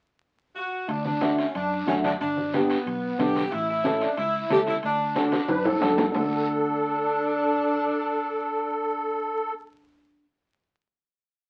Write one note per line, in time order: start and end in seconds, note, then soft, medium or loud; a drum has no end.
0.56 0.86 F#4 medium
0.88 1.41 D2 medium
0.88 1.03 D4 medium
0.88 high conga soft
0.88 high timbale medium
0.88 long guiro medium
1.05 1.35 D4 medium
1.05 high conga medium
1.21 1.45 A3 medium
1.21 1.45 D4 medium
1.21 1.45 F#4 medium
1.21 high conga medium
1.21 high timbale medium
1.21 short guiro medium
1.37 1.53 C#4 medium
1.37 high timbale medium
1.37 short guiro medium
1.54 1.81 F#2 medium
1.54 1.85 D4 medium
1.54 high conga soft
1.54 high timbale medium
1.54 long guiro medium
1.87 2.14 F#2 medium
1.87 2.10 A3 medium
1.87 1.95 C#4 medium
1.87 2.10 D4 medium
1.87 2.11 F#4 medium
1.87 high conga medium
1.87 high timbale medium
1.87 short guiro medium
2.04 2.12 D4 medium
2.04 high conga medium
2.04 high timbale medium
2.04 short guiro medium
2.20 2.73 G1 medium
2.20 2.51 D4 medium
2.20 high conga soft
2.20 high timbale medium
2.20 long guiro medium
2.37 high conga medium
2.53 2.76 B3 medium
2.53 3.20 B3 medium
2.53 2.77 D4 medium
2.53 2.77 G4 medium
2.53 high conga medium
2.53 high timbale medium
2.53 short guiro medium
2.70 high timbale medium
2.70 short guiro medium
2.86 3.13 B1 medium
2.86 high conga soft
2.86 high timbale medium
3.19 3.45 B1 medium
3.19 3.42 B3 medium
3.19 3.42 D4 medium
3.19 3.52 G4 loud
3.19 3.42 A4 medium
3.19 high conga medium
3.19 high timbale medium
3.19 short guiro medium
3.36 high conga medium
3.36 high timbale medium
3.36 short guiro medium
3.52 4.05 A1 loud
3.52 3.68 E4 loud
3.52 high timbale medium
3.52 long guiro medium
3.69 3.99 E4 medium
3.84 4.07 C#4 medium
3.84 4.07 E4 medium
3.84 4.08 A4 medium
3.84 high conga medium
3.84 high timbale medium
3.84 short guiro medium
4.01 4.18 D4 medium
4.01 high timbale medium
4.01 short guiro medium
4.17 4.44 C#2 medium
4.17 4.48 E4 medium
4.17 high conga soft
4.17 high timbale medium
4.17 long guiro medium
4.50 4.77 C#2 medium
4.50 4.73 C#4 medium
4.50 4.73 E4 medium
4.50 4.58 G4 medium
4.50 4.73 A4 medium
4.50 high conga medium
4.50 high timbale medium
4.50 low timbale medium
4.50 short guiro medium
4.67 4.75 E4 medium
4.67 high conga medium
4.67 high timbale medium
4.67 short guiro medium
4.83 5.36 D2 medium
4.83 5.15 D4 medium
4.83 high conga soft
4.83 high timbale medium
4.83 long guiro medium
5.15 5.39 D4 medium
5.15 5.95 D4 medium
5.15 5.39 F#4 medium
5.15 5.39 A4 medium
5.15 high conga medium
5.15 high timbale medium
5.15 short guiro medium
5.32 high conga medium
5.32 high timbale medium
5.32 short guiro medium
5.48 5.75 F#2 medium
5.48 5.66 B4 medium
5.48 high conga medium
5.48 high timbale medium
5.65 5.97 A4 medium
5.65 low conga loud
5.65 high timbale medium
5.81 6.08 F#2 medium
5.81 6.04 D4 medium
5.81 6.04 F#4 medium
5.81 6.05 A4 medium
5.81 low conga medium
5.81 low timbale medium
5.81 short guiro medium
5.98 6.13 A4 medium
5.98 low conga loud
5.98 low timbale medium
5.98 short guiro medium
6.12 10.24 D2 medium
6.12 10.22 D4 medium
6.12 9.53 D4 loud
6.12 10.23 F#4 medium
6.12 9.53 A4 medium
6.12 low conga medium
6.12 low timbale medium
6.12 long guiro medium
6.16 10.24 A4 medium